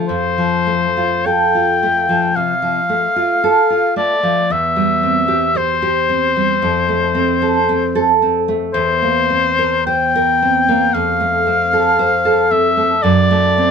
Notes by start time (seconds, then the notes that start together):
0.08 F2 C5
0.38 F3
0.67 A3
0.97 F4
1.26 A4 G5
1.55 F4
1.83 A3
2.09 F3
2.36 C3 F5
2.62 F3
2.89 A3
3.16 F4
3.44 A4
3.70 F4
3.96 A3 D5
4.23 F3
4.50 E2 E5
4.76 G3
5.03 C4
5.28 G4
5.55 C5
5.82 G4
6.09 C4
6.36 G3
6.62 F2
6.89 A3
7.15 C4
7.42 A4
7.69 C4
7.95 A4
8.22 C4
8.48 A3
8.74 E2 C5
9.02 A#3
9.30 C4
9.59 A#4
9.86 C5 G5
10.16 A#4
10.42 C4
10.68 A#3
10.94 F2 F5
11.20 A3
11.47 C4
11.73 A4
11.99 C5
12.25 A4
12.51 C4 E5
12.77 A3
13.02 F#2 D5
13.31 A3
13.58 C4